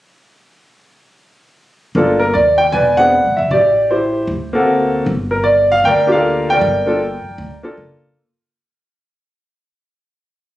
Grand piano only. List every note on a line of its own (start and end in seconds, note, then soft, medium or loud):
1.96 2.18 A#3 medium
1.96 2.18 D4 medium
1.96 2.18 F4 medium
1.96 2.19 A4 medium
2.20 2.34 A#4 medium
2.34 2.60 D5 medium
2.58 2.73 G5 medium
2.72 2.98 B4 medium
2.72 2.98 D5 medium
2.72 2.96 G#5 medium
2.97 3.11 B3 medium
2.97 3.11 C4 soft
2.97 3.11 D4 medium
2.97 3.11 G#4 medium
2.97 3.48 B4 medium
2.97 3.48 D5 medium
2.97 3.38 F#5 loud
3.37 3.51 E5 medium
3.51 3.90 G4 medium
3.51 3.91 D5 medium
3.91 4.27 E4 medium
3.91 4.27 G4 medium
3.91 4.26 C5 medium
4.53 5.03 A#3 medium
4.53 5.03 C4 medium
4.53 5.04 F#4 medium
4.53 5.04 A4 medium
5.31 5.45 A#4 medium
5.44 5.67 D5 medium
5.72 5.83 F5 medium
5.85 6.12 A#4 medium
5.85 6.51 D5 medium
5.85 6.07 G5 loud
6.07 6.58 A#3 medium
6.07 6.58 D4 medium
6.07 6.58 F4 medium
6.07 6.58 G4 medium
6.12 6.85 A4 medium
6.12 6.51 A#4 medium
6.12 6.46 F5 medium
6.50 7.76 A#4 medium
6.50 7.76 D5 medium
6.50 7.75 G5 loud
6.86 6.98 A#3 medium
6.86 6.99 D4 medium
6.86 6.99 F4 medium
6.86 6.99 A4 medium
7.63 8.13 A#3 medium
7.63 8.14 D4 medium
7.63 8.14 F4 medium
7.63 8.14 A4 medium